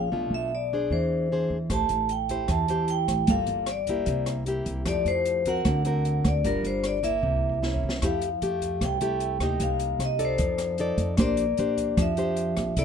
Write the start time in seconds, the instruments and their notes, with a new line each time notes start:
Already playing: upright bass A#1, vibraphone F5
0.12 upright bass B1, nylon-string guitar B2 A3 D4 F4
0.30 upright bass B1
0.34 vibraphone E5
0.55 vibraphone D5
0.73 nylon-string guitar D4 G#4 C5
0.90 upright bass E2, nylon-string guitar E3, vibraphone C5
1.32 nylon-string guitar D4 G#4 C5
1.50 upright bass E2
1.70 upright bass A1, nylon-string guitar A3 E4 G4 C5, vibraphone A5, kick, cross-stick, closed hi-hat
1.89 upright bass A1, closed hi-hat
2.09 vibraphone G5, closed hi-hat
2.29 nylon-string guitar E4 G4 C5, kick, closed hi-hat
2.48 upright bass E2, nylon-string guitar E3, vibraphone A5, kick, cross-stick, closed hi-hat
2.68 nylon-string guitar E4 G4 C5, closed hi-hat
2.88 vibraphone G5, closed hi-hat
3.08 upright bass A1, kick, cross-stick, closed hi-hat
3.27 upright bass G1, nylon-string guitar G3 A#3 F4 A4, vibraphone F5, kick, closed hi-hat
3.47 upright bass G1, closed hi-hat
3.66 cross-stick, closed hi-hat
3.71 vibraphone D5
3.87 nylon-string guitar A#3 E4 G4, kick, closed hi-hat
4.06 upright bass C2, nylon-string guitar C3, kick, closed hi-hat
4.26 cross-stick, closed hi-hat
4.46 nylon-string guitar A#3 E4 G4, closed hi-hat
4.66 upright bass C2, kick, closed hi-hat
4.85 upright bass F2, nylon-string guitar F3 A3 E4 G4, vibraphone D5, kick, cross-stick, closed hi-hat
5.05 upright bass F2, vibraphone C5, closed hi-hat
5.25 closed hi-hat
5.45 nylon-string guitar C4 F#4 A#4, vibraphone F#5, kick, closed hi-hat
5.65 upright bass D2, nylon-string guitar D3, kick, cross-stick, closed hi-hat
5.85 nylon-string guitar C4 F#4 A#4, closed hi-hat
6.05 closed hi-hat
6.25 upright bass D2, vibraphone D5, kick, cross-stick, closed hi-hat
6.44 upright bass G1, nylon-string guitar G3 D4 F4 A#4, vibraphone A#4, kick, closed hi-hat
6.63 upright bass G1, vibraphone C5, closed hi-hat
6.84 vibraphone D5, cross-stick, closed hi-hat
7.03 nylon-string guitar A#3 E4, vibraphone E5, kick, closed hi-hat
7.23 upright bass C2, nylon-string guitar C3, kick
7.36 kick
7.50 kick
7.62 nylon-string guitar A#3 C#4 E4, snare
7.76 kick
7.83 upright bass C2
7.89 snare
8.02 upright bass F2, nylon-string guitar F3 A3 E4 G4, vibraphone F5, kick, cross-stick, closed hi-hat
8.22 closed hi-hat
8.42 upright bass F2, nylon-string guitar A3 G4, closed hi-hat
8.61 kick, closed hi-hat
8.81 upright bass C2, nylon-string guitar C3, vibraphone G5, kick, cross-stick, closed hi-hat
9.01 nylon-string guitar A3 E4 G4, closed hi-hat
9.20 closed hi-hat
9.40 upright bass D2, nylon-string guitar A#3 D#4 G4, kick, cross-stick, closed hi-hat
9.60 upright bass C2, nylon-string guitar C3, vibraphone F5, kick, closed hi-hat
9.79 closed hi-hat
9.99 upright bass C2, cross-stick, closed hi-hat
10.05 vibraphone D#5
10.19 nylon-string guitar D#4 A4 D5, kick, closed hi-hat
10.25 vibraphone C5
10.38 upright bass F2, nylon-string guitar F3, kick, closed hi-hat
10.58 cross-stick, closed hi-hat
10.78 nylon-string guitar D#4 A4 D5, closed hi-hat
10.97 upright bass F2, kick, closed hi-hat
11.17 upright bass A#1, nylon-string guitar A#3 D4 G4 C5, vibraphone D5, kick, cross-stick, closed hi-hat
11.37 closed hi-hat
11.57 upright bass A#1, nylon-string guitar D4 G4 C5, closed hi-hat
11.78 kick, closed hi-hat
11.97 upright bass F2, nylon-string guitar F3, kick, cross-stick, closed hi-hat
12.01 vibraphone E5
12.17 nylon-string guitar D4 G4 C5, closed hi-hat
12.37 closed hi-hat
12.57 upright bass A#1, kick, cross-stick, closed hi-hat
12.76 upright bass C2, nylon-string guitar C3 A#3 E4 A4, vibraphone D5, kick, closed hi-hat